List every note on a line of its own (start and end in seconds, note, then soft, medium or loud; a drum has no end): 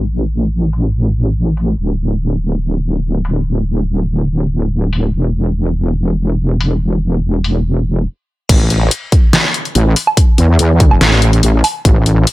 0.00 1.76 A1 medium
0.73 open hi-hat medium
1.57 open hi-hat medium
1.78 5.12 D1 medium
3.25 open hi-hat medium
4.93 open hi-hat medium
5.14 8.07 E1 medium
6.61 open hi-hat medium
7.44 open hi-hat medium
8.49 8.90 A1 loud
8.49 kick loud
8.49 closed hi-hat medium
8.49 crash loud
8.70 closed hi-hat medium
8.91 closed hi-hat medium
9.12 kick loud
9.12 closed hi-hat medium
9.33 snare loud
9.33 closed hi-hat medium
9.54 closed hi-hat medium
9.65 closed hi-hat soft
9.75 9.95 A1 loud
9.75 closed hi-hat medium
9.96 open hi-hat loud
10.07 low woodblock medium
10.17 kick loud
10.17 closed hi-hat medium
10.38 10.58 E2 loud
10.38 closed hi-hat medium
10.59 11.00 E2 loud
10.59 closed hi-hat medium
10.80 kick loud
10.80 closed hi-hat medium
10.91 low woodblock medium
11.01 11.41 A1 loud
11.01 snare loud
11.01 closed hi-hat medium
11.22 closed hi-hat medium
11.33 closed hi-hat soft
11.43 11.62 A1 loud
11.43 closed hi-hat medium
11.64 open hi-hat loud
11.64 low woodblock medium
11.85 12.25 A1 loud
11.85 kick loud
11.85 closed hi-hat medium
12.06 closed hi-hat medium
12.27 closed hi-hat medium